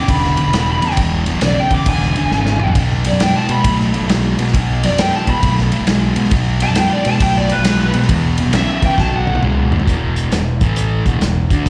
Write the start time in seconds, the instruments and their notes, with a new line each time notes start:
0.08 fingered electric bass E1, distorted electric guitar E2 D3, lead electric guitar B5, kick, ride
0.24 snare
0.37 distorted electric guitar E2 D3, ride
0.46 fingered electric bass E1
0.53 distorted electric guitar E2 C#3, snare, ride
0.82 fingered electric bass E2, distorted electric guitar E2 C#3, ride
0.91 snare
0.97 fingered electric bass E1, distorted electric guitar E2 B2, kick, ride
1.26 distorted electric guitar E2 B2, ride
1.35 fingered electric bass B1
1.41 distorted electric guitar E2 C#3, snare, ride
1.45 lead electric guitar D5
1.60 lead electric guitar G5
1.71 fingered electric bass E2, distorted electric guitar E2 C#3, lead electric guitar D6, kick, ride
1.86 fingered electric bass E1, distorted electric guitar E2 D3, lead electric guitar G#5, kick, ride
2.02 snare
2.16 distorted electric guitar E2 D3, ride
2.23 fingered electric bass E1
2.31 fingered electric bass G#1, distorted electric guitar E2 C#3, snare
2.46 snare
2.60 fingered electric bass B1, distorted electric guitar E2 C#3, mid tom
2.68 floor tom
2.75 fingered electric bass B1, distorted electric guitar B2 F#3, kick, ride
3.04 distorted electric guitar B2 F#3, lead electric guitar D5, ride
3.12 fingered electric bass F#2
3.20 distorted electric guitar B2 G#3, lead electric guitar G5, snare, ride
3.37 lead electric guitar A5
3.49 fingered electric bass B2, distorted electric guitar B2 G#3, lead electric guitar B5, ride
3.64 fingered electric bass B1, distorted electric guitar B2 A3, kick, ride
3.81 snare
3.94 distorted electric guitar B2 A3, ride
4.01 fingered electric bass B1
4.09 distorted electric guitar B2 G#3, snare, ride
4.38 fingered electric bass B2, distorted electric guitar B2 G#3, ride
4.48 snare
4.54 fingered electric bass B1, distorted electric guitar B2 F#3, kick, ride
4.83 distorted electric guitar B2 F#3, lead electric guitar D5, ride
4.90 fingered electric bass F#2
4.98 distorted electric guitar B2 G#3, lead electric guitar G5, snare, ride
5.16 lead electric guitar A5
5.27 fingered electric bass B2, distorted electric guitar B2 G#3, lead electric guitar B5, kick, ride
5.43 fingered electric bass B1, distorted electric guitar B2 A3, kick, ride
5.58 snare
5.72 distorted electric guitar B2 A3, ride
5.81 fingered electric bass B1
5.87 distorted electric guitar B2 G#3, snare, ride
6.16 fingered electric bass B2, distorted electric guitar B2 G#3, ride
6.25 snare
6.31 fingered electric bass B1, distorted electric guitar B2 F#3, kick, ride
6.60 distorted electric guitar B2 F#3, lead electric guitar A5, ride
6.69 fingered electric bass F#2
6.75 distorted electric guitar B2 G#3, lead electric guitar G5, snare, ride
6.92 lead electric guitar D5
7.05 fingered electric bass B2, distorted electric guitar B2 G#3, lead electric guitar A5, ride
7.20 fingered electric bass B1, distorted electric guitar B2 A3, lead electric guitar G5, kick, ride
7.38 lead electric guitar D5
7.49 distorted electric guitar B2 A3, lead electric guitar B4, ride
7.59 fingered electric bass B1
7.64 distorted electric guitar B2 G#3, snare, ride
7.93 distorted electric guitar B2 G#3, fingered electric bass B2, ride
8.02 snare
8.09 fingered electric bass E2, distorted electric guitar E2 B2, kick, ride
8.38 distorted electric guitar E2 B2, ride
8.46 fingered electric bass B1
8.53 distorted electric guitar E2 C#3, lead electric guitar E5, snare, ride
8.82 distorted electric guitar E2 C#3, fingered electric bass E3, lead electric guitar G5, kick, ride
8.98 fingered electric bass B1, distorted electric guitar B2 F#3, lead electric guitar A5, kick, snare
9.16 lead electric guitar F#5
9.27 fingered electric bass B1, distorted electric guitar B2 A3, high tom
9.35 high tom
9.43 fingered electric bass C#2, distorted electric guitar B2 G#3, mid tom
9.72 fingered electric bass D#2, distorted electric guitar B2 G#3, floor tom
9.79 floor tom
9.87 fingered electric bass E1, distorted electric guitar E2 B2 E3, kick, closed hi-hat
10.16 closed hi-hat
10.32 fingered electric bass E1, distorted electric guitar E2 B2, snare, closed hi-hat
10.61 fingered electric bass A1, distorted electric guitar A2 E3 A3, kick, closed hi-hat
10.76 closed hi-hat
11.06 fingered electric bass E1, distorted electric guitar E2 B2 E3, kick, closed hi-hat
11.21 fingered electric bass E1, distorted electric guitar E2 B2, snare, closed hi-hat
11.50 fingered electric bass D2, distorted electric guitar D3 A3 D4, kick, closed hi-hat